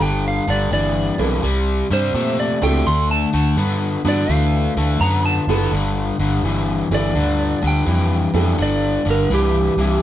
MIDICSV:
0, 0, Header, 1, 5, 480
1, 0, Start_track
1, 0, Key_signature, 1, "major"
1, 0, Tempo, 715137
1, 7, Time_signature, 4, 2, 24, 8
1, 6726, End_track
2, 0, Start_track
2, 0, Title_t, "Electric slide guitar"
2, 0, Program_c, 0, 29
2, 15, Note_on_c, 0, 79, 87
2, 166, Note_off_c, 0, 79, 0
2, 186, Note_on_c, 0, 77, 79
2, 332, Note_off_c, 0, 77, 0
2, 336, Note_on_c, 0, 74, 70
2, 484, Note_off_c, 0, 74, 0
2, 492, Note_on_c, 0, 74, 89
2, 797, Note_off_c, 0, 74, 0
2, 1297, Note_on_c, 0, 72, 95
2, 1602, Note_off_c, 0, 72, 0
2, 1609, Note_on_c, 0, 74, 80
2, 1763, Note_off_c, 0, 74, 0
2, 1768, Note_on_c, 0, 79, 93
2, 1922, Note_off_c, 0, 79, 0
2, 1924, Note_on_c, 0, 84, 87
2, 2080, Note_off_c, 0, 84, 0
2, 2089, Note_on_c, 0, 81, 93
2, 2345, Note_off_c, 0, 81, 0
2, 2742, Note_on_c, 0, 74, 93
2, 2899, Note_off_c, 0, 74, 0
2, 2899, Note_on_c, 0, 77, 103
2, 3358, Note_off_c, 0, 77, 0
2, 3361, Note_on_c, 0, 82, 87
2, 3518, Note_off_c, 0, 82, 0
2, 3528, Note_on_c, 0, 81, 96
2, 3837, Note_off_c, 0, 81, 0
2, 4661, Note_on_c, 0, 74, 83
2, 5118, Note_off_c, 0, 74, 0
2, 5151, Note_on_c, 0, 79, 69
2, 5760, Note_off_c, 0, 79, 0
2, 5788, Note_on_c, 0, 74, 77
2, 6085, Note_off_c, 0, 74, 0
2, 6110, Note_on_c, 0, 70, 75
2, 6254, Note_off_c, 0, 70, 0
2, 6269, Note_on_c, 0, 67, 85
2, 6726, Note_off_c, 0, 67, 0
2, 6726, End_track
3, 0, Start_track
3, 0, Title_t, "Upright piano"
3, 0, Program_c, 1, 0
3, 796, Note_on_c, 1, 60, 73
3, 799, Note_on_c, 1, 62, 57
3, 800, Note_on_c, 1, 64, 61
3, 802, Note_on_c, 1, 69, 65
3, 805, Note_on_c, 1, 70, 74
3, 946, Note_off_c, 1, 60, 0
3, 948, Note_off_c, 1, 62, 0
3, 948, Note_off_c, 1, 64, 0
3, 949, Note_off_c, 1, 69, 0
3, 950, Note_off_c, 1, 70, 0
3, 1757, Note_on_c, 1, 60, 77
3, 1758, Note_on_c, 1, 62, 79
3, 1759, Note_on_c, 1, 64, 82
3, 1764, Note_on_c, 1, 66, 72
3, 1766, Note_on_c, 1, 69, 81
3, 1906, Note_off_c, 1, 60, 0
3, 1907, Note_off_c, 1, 62, 0
3, 1907, Note_off_c, 1, 64, 0
3, 1910, Note_off_c, 1, 66, 0
3, 1911, Note_off_c, 1, 69, 0
3, 2713, Note_on_c, 1, 59, 76
3, 2716, Note_on_c, 1, 62, 66
3, 2720, Note_on_c, 1, 66, 72
3, 2721, Note_on_c, 1, 52, 66
3, 2725, Note_on_c, 1, 71, 70
3, 3328, Note_off_c, 1, 59, 0
3, 3329, Note_off_c, 1, 62, 0
3, 3331, Note_off_c, 1, 66, 0
3, 3332, Note_off_c, 1, 52, 0
3, 3333, Note_off_c, 1, 71, 0
3, 3679, Note_on_c, 1, 59, 84
3, 3679, Note_on_c, 1, 64, 78
3, 3682, Note_on_c, 1, 65, 75
3, 3684, Note_on_c, 1, 67, 67
3, 3690, Note_on_c, 1, 69, 81
3, 3827, Note_off_c, 1, 59, 0
3, 3827, Note_off_c, 1, 64, 0
3, 3828, Note_off_c, 1, 65, 0
3, 3829, Note_off_c, 1, 67, 0
3, 3832, Note_off_c, 1, 69, 0
3, 4635, Note_on_c, 1, 59, 57
3, 4636, Note_on_c, 1, 62, 49
3, 4639, Note_on_c, 1, 64, 57
3, 4644, Note_on_c, 1, 67, 52
3, 4646, Note_on_c, 1, 69, 57
3, 4785, Note_off_c, 1, 59, 0
3, 4785, Note_off_c, 1, 62, 0
3, 4787, Note_off_c, 1, 64, 0
3, 4789, Note_off_c, 1, 67, 0
3, 4790, Note_off_c, 1, 69, 0
3, 5588, Note_on_c, 1, 59, 72
3, 5594, Note_on_c, 1, 64, 55
3, 5599, Note_on_c, 1, 62, 61
3, 5601, Note_on_c, 1, 67, 61
3, 5602, Note_on_c, 1, 69, 69
3, 6205, Note_off_c, 1, 59, 0
3, 6208, Note_off_c, 1, 64, 0
3, 6211, Note_off_c, 1, 62, 0
3, 6212, Note_off_c, 1, 67, 0
3, 6212, Note_off_c, 1, 69, 0
3, 6726, End_track
4, 0, Start_track
4, 0, Title_t, "Overdriven electric guitar"
4, 0, Program_c, 2, 29
4, 1, Note_on_c, 2, 43, 76
4, 2, Note_on_c, 2, 50, 94
4, 289, Note_off_c, 2, 43, 0
4, 290, Note_off_c, 2, 50, 0
4, 319, Note_on_c, 2, 43, 70
4, 322, Note_on_c, 2, 50, 75
4, 468, Note_off_c, 2, 43, 0
4, 469, Note_off_c, 2, 50, 0
4, 482, Note_on_c, 2, 43, 92
4, 485, Note_on_c, 2, 52, 86
4, 770, Note_off_c, 2, 43, 0
4, 771, Note_off_c, 2, 52, 0
4, 794, Note_on_c, 2, 43, 69
4, 800, Note_on_c, 2, 52, 78
4, 945, Note_off_c, 2, 43, 0
4, 948, Note_off_c, 2, 52, 0
4, 957, Note_on_c, 2, 48, 104
4, 959, Note_on_c, 2, 55, 115
4, 1247, Note_off_c, 2, 48, 0
4, 1248, Note_off_c, 2, 55, 0
4, 1281, Note_on_c, 2, 48, 80
4, 1286, Note_on_c, 2, 55, 77
4, 1428, Note_off_c, 2, 48, 0
4, 1431, Note_off_c, 2, 55, 0
4, 1441, Note_on_c, 2, 48, 74
4, 1444, Note_on_c, 2, 57, 77
4, 1729, Note_off_c, 2, 48, 0
4, 1731, Note_off_c, 2, 57, 0
4, 1756, Note_on_c, 2, 48, 75
4, 1759, Note_on_c, 2, 57, 80
4, 1906, Note_off_c, 2, 48, 0
4, 1907, Note_off_c, 2, 57, 0
4, 1920, Note_on_c, 2, 50, 80
4, 1923, Note_on_c, 2, 57, 100
4, 2208, Note_off_c, 2, 50, 0
4, 2210, Note_off_c, 2, 57, 0
4, 2235, Note_on_c, 2, 50, 70
4, 2241, Note_on_c, 2, 57, 82
4, 2385, Note_off_c, 2, 50, 0
4, 2388, Note_off_c, 2, 57, 0
4, 2398, Note_on_c, 2, 50, 73
4, 2402, Note_on_c, 2, 59, 83
4, 2687, Note_off_c, 2, 50, 0
4, 2689, Note_off_c, 2, 59, 0
4, 2716, Note_on_c, 2, 50, 69
4, 2717, Note_on_c, 2, 59, 76
4, 2866, Note_off_c, 2, 50, 0
4, 2866, Note_off_c, 2, 59, 0
4, 2881, Note_on_c, 2, 50, 92
4, 2884, Note_on_c, 2, 57, 104
4, 3169, Note_off_c, 2, 50, 0
4, 3170, Note_off_c, 2, 57, 0
4, 3202, Note_on_c, 2, 50, 78
4, 3205, Note_on_c, 2, 57, 85
4, 3348, Note_off_c, 2, 50, 0
4, 3350, Note_off_c, 2, 57, 0
4, 3366, Note_on_c, 2, 50, 84
4, 3370, Note_on_c, 2, 59, 88
4, 3651, Note_off_c, 2, 50, 0
4, 3653, Note_off_c, 2, 59, 0
4, 3685, Note_on_c, 2, 50, 62
4, 3686, Note_on_c, 2, 59, 91
4, 3830, Note_off_c, 2, 50, 0
4, 3830, Note_off_c, 2, 59, 0
4, 3843, Note_on_c, 2, 43, 78
4, 3851, Note_on_c, 2, 50, 83
4, 4130, Note_off_c, 2, 43, 0
4, 4133, Note_off_c, 2, 50, 0
4, 4158, Note_on_c, 2, 43, 72
4, 4160, Note_on_c, 2, 50, 88
4, 4306, Note_off_c, 2, 43, 0
4, 4307, Note_off_c, 2, 50, 0
4, 4322, Note_on_c, 2, 43, 70
4, 4329, Note_on_c, 2, 52, 77
4, 4609, Note_off_c, 2, 43, 0
4, 4612, Note_off_c, 2, 52, 0
4, 4640, Note_on_c, 2, 43, 71
4, 4644, Note_on_c, 2, 52, 75
4, 4787, Note_off_c, 2, 43, 0
4, 4789, Note_off_c, 2, 52, 0
4, 4798, Note_on_c, 2, 43, 83
4, 4801, Note_on_c, 2, 50, 90
4, 5087, Note_off_c, 2, 43, 0
4, 5089, Note_off_c, 2, 50, 0
4, 5113, Note_on_c, 2, 43, 70
4, 5117, Note_on_c, 2, 50, 74
4, 5264, Note_off_c, 2, 43, 0
4, 5266, Note_off_c, 2, 50, 0
4, 5274, Note_on_c, 2, 43, 71
4, 5279, Note_on_c, 2, 52, 83
4, 5565, Note_off_c, 2, 43, 0
4, 5568, Note_off_c, 2, 52, 0
4, 5596, Note_on_c, 2, 43, 71
4, 5601, Note_on_c, 2, 52, 76
4, 5745, Note_off_c, 2, 43, 0
4, 5748, Note_off_c, 2, 52, 0
4, 5759, Note_on_c, 2, 43, 83
4, 5759, Note_on_c, 2, 50, 93
4, 6048, Note_off_c, 2, 43, 0
4, 6048, Note_off_c, 2, 50, 0
4, 6075, Note_on_c, 2, 43, 73
4, 6077, Note_on_c, 2, 50, 82
4, 6225, Note_off_c, 2, 43, 0
4, 6226, Note_off_c, 2, 50, 0
4, 6244, Note_on_c, 2, 43, 71
4, 6247, Note_on_c, 2, 52, 88
4, 6530, Note_off_c, 2, 43, 0
4, 6532, Note_off_c, 2, 52, 0
4, 6564, Note_on_c, 2, 43, 65
4, 6569, Note_on_c, 2, 52, 78
4, 6710, Note_off_c, 2, 43, 0
4, 6712, Note_off_c, 2, 52, 0
4, 6726, End_track
5, 0, Start_track
5, 0, Title_t, "Fingered electric bass"
5, 0, Program_c, 3, 33
5, 1, Note_on_c, 3, 31, 94
5, 255, Note_off_c, 3, 31, 0
5, 319, Note_on_c, 3, 31, 97
5, 450, Note_off_c, 3, 31, 0
5, 476, Note_on_c, 3, 31, 82
5, 732, Note_off_c, 3, 31, 0
5, 795, Note_on_c, 3, 35, 85
5, 928, Note_off_c, 3, 35, 0
5, 961, Note_on_c, 3, 36, 89
5, 1215, Note_off_c, 3, 36, 0
5, 1277, Note_on_c, 3, 43, 84
5, 1408, Note_off_c, 3, 43, 0
5, 1437, Note_on_c, 3, 46, 86
5, 1692, Note_off_c, 3, 46, 0
5, 1759, Note_on_c, 3, 37, 81
5, 1890, Note_off_c, 3, 37, 0
5, 1920, Note_on_c, 3, 38, 87
5, 2174, Note_off_c, 3, 38, 0
5, 2238, Note_on_c, 3, 38, 91
5, 2369, Note_off_c, 3, 38, 0
5, 2393, Note_on_c, 3, 43, 86
5, 2650, Note_off_c, 3, 43, 0
5, 2715, Note_on_c, 3, 43, 81
5, 2847, Note_off_c, 3, 43, 0
5, 2876, Note_on_c, 3, 38, 104
5, 3131, Note_off_c, 3, 38, 0
5, 3196, Note_on_c, 3, 38, 89
5, 3328, Note_off_c, 3, 38, 0
5, 3356, Note_on_c, 3, 42, 88
5, 3611, Note_off_c, 3, 42, 0
5, 3672, Note_on_c, 3, 30, 82
5, 3805, Note_off_c, 3, 30, 0
5, 3836, Note_on_c, 3, 31, 81
5, 4092, Note_off_c, 3, 31, 0
5, 4154, Note_on_c, 3, 31, 85
5, 4286, Note_off_c, 3, 31, 0
5, 4315, Note_on_c, 3, 31, 72
5, 4571, Note_off_c, 3, 31, 0
5, 4634, Note_on_c, 3, 31, 76
5, 4766, Note_off_c, 3, 31, 0
5, 4797, Note_on_c, 3, 38, 90
5, 5052, Note_off_c, 3, 38, 0
5, 5119, Note_on_c, 3, 38, 73
5, 5250, Note_off_c, 3, 38, 0
5, 5281, Note_on_c, 3, 41, 81
5, 5534, Note_off_c, 3, 41, 0
5, 5593, Note_on_c, 3, 41, 83
5, 5726, Note_off_c, 3, 41, 0
5, 5765, Note_on_c, 3, 31, 82
5, 6017, Note_off_c, 3, 31, 0
5, 6079, Note_on_c, 3, 31, 88
5, 6210, Note_off_c, 3, 31, 0
5, 6243, Note_on_c, 3, 36, 85
5, 6496, Note_off_c, 3, 36, 0
5, 6556, Note_on_c, 3, 36, 75
5, 6688, Note_off_c, 3, 36, 0
5, 6726, End_track
0, 0, End_of_file